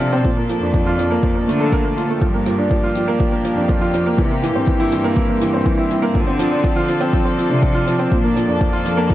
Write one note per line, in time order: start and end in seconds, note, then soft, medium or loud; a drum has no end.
0.00 0.25 C3 medium
0.00 0.23 F3 medium
0.00 0.25 F3 medium
0.00 0.13 C4 medium
0.00 0.21 C4 medium
0.00 0.27 D4 medium
0.00 2.17 D4 medium
0.00 0.27 F4 medium
0.00 2.17 A4 medium
0.13 0.24 C4 medium
0.24 0.55 A#2 medium
0.24 4.14 F3 medium
0.24 0.36 F3 medium
0.24 kick medium
0.37 0.49 A#3 medium
0.49 0.61 F3 medium
0.49 closed hi-hat medium
0.61 1.22 F2 medium
0.61 0.73 D4 medium
0.74 0.86 F3 medium
0.74 kick medium
0.86 0.98 F4 medium
0.98 1.10 F3 medium
0.98 closed hi-hat medium
1.11 1.22 A#3 medium
1.23 1.40 F2 medium
1.23 1.35 F3 medium
1.23 kick medium
1.35 1.47 A#3 medium
1.48 2.03 D3 medium
1.48 1.59 A3 medium
1.48 closed hi-hat medium
1.60 1.72 A4 medium
1.72 1.83 A#3 medium
1.72 kick medium
1.85 1.96 A#3 medium
1.97 2.09 F4 medium
1.97 closed hi-hat medium
2.10 2.21 A3 medium
2.21 3.01 G2 medium
2.21 2.33 F3 medium
2.21 6.11 A#3 medium
2.21 4.16 D4 medium
2.21 6.11 G4 medium
2.21 kick medium
2.34 2.46 A#3 medium
2.46 2.58 F3 medium
2.46 closed hi-hat medium
2.58 2.70 D4 medium
2.71 2.83 F3 medium
2.71 kick loud
2.83 2.95 F4 medium
2.95 3.07 F3 medium
2.95 closed hi-hat medium
3.08 3.19 A#3 medium
3.20 3.31 F3 medium
3.20 kick medium
3.32 3.44 A#3 medium
3.44 3.56 F3 medium
3.44 closed hi-hat medium
3.57 4.12 F2 medium
3.57 3.68 D4 medium
3.69 3.81 F3 medium
3.69 kick loud
3.81 3.93 F4 medium
3.93 4.05 F3 medium
3.93 closed hi-hat medium
4.06 4.18 A#3 medium
4.18 4.49 C3 medium
4.18 6.13 E3 medium
4.18 4.30 E3 medium
4.18 8.08 C4 medium
4.18 kick loud
4.31 4.42 A#3 medium
4.43 4.54 E3 medium
4.43 closed hi-hat medium
4.55 6.09 G2 medium
4.55 4.67 C4 medium
4.67 4.79 E3 medium
4.67 kick loud
4.80 4.91 E4 loud
4.92 5.04 E3 medium
4.92 closed hi-hat medium
5.04 5.16 A#3 medium
5.17 5.28 E3 medium
5.17 kick loud
5.29 5.40 A#3 medium
5.41 5.53 E3 medium
5.41 closed hi-hat medium
5.54 5.65 C4 medium
5.66 5.77 E3 medium
5.66 kick loud
5.78 5.90 E4 medium
5.90 6.02 E3 medium
5.90 closed hi-hat medium
6.02 6.14 A#3 medium
6.14 6.95 D3 loud
6.14 8.09 F3 medium
6.14 6.26 F3 medium
6.14 9.14 D4 medium
6.14 8.09 A4 medium
6.14 kick loud
6.27 6.39 C4 medium
6.39 6.51 F3 medium
6.39 closed hi-hat medium
6.51 6.63 D4 medium
6.64 6.76 F3 medium
6.64 kick loud
6.76 6.88 F4 medium
6.88 7.00 F3 medium
6.88 closed hi-hat medium
7.01 7.12 C4 medium
7.13 7.25 F3 medium
7.13 kick loud
7.25 7.37 C4 medium
7.37 7.49 F3 medium
7.37 closed hi-hat medium
7.50 8.05 C3 medium
7.50 7.62 D4 medium
7.62 7.74 F3 medium
7.62 kick loud
7.74 7.86 F4 medium
7.87 7.99 F3 medium
7.87 closed hi-hat medium
7.99 8.11 C4 medium
8.12 8.42 A#2 medium
8.12 8.23 F3 medium
8.12 9.14 F3 medium
8.12 9.14 A#3 medium
8.12 9.14 A4 medium
8.12 kick loud
8.24 8.35 A#3 medium
8.36 8.48 F3 medium
8.36 closed hi-hat medium
8.48 9.14 F2 medium
8.48 8.60 D4 medium
8.61 8.72 F3 medium
8.61 kick loud
8.73 8.85 F4 medium
8.85 8.97 F3 medium
8.85 closed hi-hat medium
8.97 9.09 A#3 medium
9.10 9.14 F3 medium
9.10 kick medium